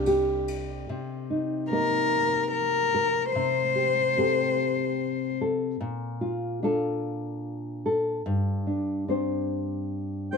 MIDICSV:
0, 0, Header, 1, 7, 480
1, 0, Start_track
1, 0, Tempo, 819672
1, 528, Time_signature, 6, 3, 24, 8
1, 6075, End_track
2, 0, Start_track
2, 0, Title_t, "Harmonica"
2, 0, Program_c, 0, 22
2, 6044, Note_on_c, 0, 79, 72
2, 6075, Note_off_c, 0, 79, 0
2, 6075, End_track
3, 0, Start_track
3, 0, Title_t, "Cello"
3, 0, Program_c, 1, 42
3, 1000, Note_on_c, 1, 70, 86
3, 1462, Note_off_c, 1, 70, 0
3, 1474, Note_on_c, 1, 70, 79
3, 1937, Note_off_c, 1, 70, 0
3, 1942, Note_on_c, 1, 72, 72
3, 3125, Note_off_c, 1, 72, 0
3, 6075, End_track
4, 0, Start_track
4, 0, Title_t, "Nylon-string guitar"
4, 0, Program_c, 2, 24
4, 0, Note_on_c, 2, 48, 79
4, 0, Note_on_c, 2, 62, 53
4, 41, Note_on_c, 2, 67, 58
4, 504, Note_off_c, 2, 62, 0
4, 516, Note_off_c, 2, 48, 0
4, 523, Note_on_c, 2, 48, 61
4, 763, Note_on_c, 2, 63, 37
4, 1001, Note_off_c, 2, 63, 0
4, 1003, Note_on_c, 2, 58, 41
4, 1008, Note_on_c, 2, 63, 46
4, 1010, Note_off_c, 2, 67, 0
4, 1012, Note_on_c, 2, 70, 49
4, 1718, Note_off_c, 2, 70, 0
4, 1725, Note_on_c, 2, 70, 51
4, 1937, Note_off_c, 2, 70, 0
4, 1939, Note_off_c, 2, 63, 0
4, 1957, Note_off_c, 2, 48, 0
4, 1964, Note_on_c, 2, 48, 53
4, 1965, Note_off_c, 2, 58, 0
4, 2199, Note_on_c, 2, 67, 43
4, 2441, Note_off_c, 2, 67, 0
4, 2445, Note_on_c, 2, 60, 44
4, 2450, Note_on_c, 2, 69, 48
4, 2451, Note_on_c, 2, 67, 46
4, 3163, Note_off_c, 2, 69, 0
4, 3170, Note_on_c, 2, 69, 46
4, 3370, Note_off_c, 2, 48, 0
4, 3372, Note_off_c, 2, 60, 0
4, 3375, Note_off_c, 2, 67, 0
4, 3376, Note_off_c, 2, 69, 0
4, 3400, Note_on_c, 2, 46, 63
4, 3637, Note_on_c, 2, 65, 49
4, 3878, Note_off_c, 2, 65, 0
4, 3881, Note_on_c, 2, 62, 47
4, 3886, Note_on_c, 2, 65, 42
4, 3889, Note_on_c, 2, 69, 56
4, 4594, Note_off_c, 2, 69, 0
4, 4601, Note_on_c, 2, 69, 56
4, 4808, Note_off_c, 2, 46, 0
4, 4809, Note_off_c, 2, 62, 0
4, 4810, Note_off_c, 2, 69, 0
4, 4812, Note_off_c, 2, 65, 0
4, 4836, Note_on_c, 2, 43, 58
4, 5076, Note_on_c, 2, 62, 44
4, 5312, Note_off_c, 2, 62, 0
4, 5318, Note_on_c, 2, 60, 46
4, 5320, Note_on_c, 2, 62, 46
4, 5327, Note_on_c, 2, 72, 54
4, 6041, Note_off_c, 2, 72, 0
4, 6048, Note_on_c, 2, 72, 47
4, 6075, Note_off_c, 2, 43, 0
4, 6075, Note_off_c, 2, 60, 0
4, 6075, Note_off_c, 2, 62, 0
4, 6075, Note_off_c, 2, 72, 0
4, 6075, End_track
5, 0, Start_track
5, 0, Title_t, "String section"
5, 0, Program_c, 3, 48
5, 0, Note_on_c, 3, 48, 80
5, 0, Note_on_c, 3, 55, 69
5, 0, Note_on_c, 3, 62, 71
5, 0, Note_on_c, 3, 67, 89
5, 503, Note_off_c, 3, 62, 0
5, 505, Note_off_c, 3, 67, 0
5, 510, Note_off_c, 3, 48, 0
5, 512, Note_off_c, 3, 55, 0
5, 6075, End_track
6, 0, Start_track
6, 0, Title_t, "Fretless electric bass"
6, 0, Program_c, 4, 35
6, 0, Note_on_c, 4, 36, 83
6, 503, Note_off_c, 4, 36, 0
6, 6075, End_track
7, 0, Start_track
7, 0, Title_t, "Drums"
7, 35, Note_on_c, 9, 51, 53
7, 94, Note_off_c, 9, 51, 0
7, 280, Note_on_c, 9, 51, 51
7, 339, Note_off_c, 9, 51, 0
7, 6075, End_track
0, 0, End_of_file